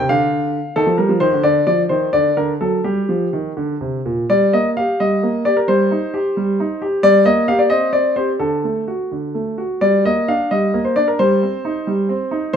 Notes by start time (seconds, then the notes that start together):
0.09 D3 F5
0.76 D#3 A4
0.87 F3
0.98 G3 A#4
1.09 F3
1.20 D#3 C5
1.33 D3
1.43 D3 D5
1.67 F3 D5
1.89 D#3 C5
2.13 D3 D5
2.37 D3 A#4
2.61 F#3 A4
2.84 G3 G4
3.09 F3
3.33 D#3
3.57 D3
3.81 C3
4.05 A#2
4.30 G3 D5
4.53 A#3 D#5
4.77 G4 F5
5.00 G3 D#5
5.23 A#3
5.45 G4 D5
5.57 A#4
5.68 G3 C5
5.91 D#4
6.14 G4
6.37 G3
6.60 D#4
6.82 G4
7.03 G3 D5
7.26 A#3 D#5
7.48 A#3 G4 F5
7.59 D5
7.70 C4 D#5
7.93 C4 D5
8.16 C4 G4 C5
8.39 D3 A4
8.64 A3
8.88 F#4
9.12 D3
9.35 A3
9.58 F#4
9.81 G3 D5
10.05 A#3 D#5
10.28 D4 F5
10.51 G3 D#5
10.74 A#3
10.85 C5
10.96 D4 D5
11.08 A#4
11.19 G3 C5
11.43 C4
11.65 D#4
11.87 G3
12.09 C4
12.31 D#4
12.53 C5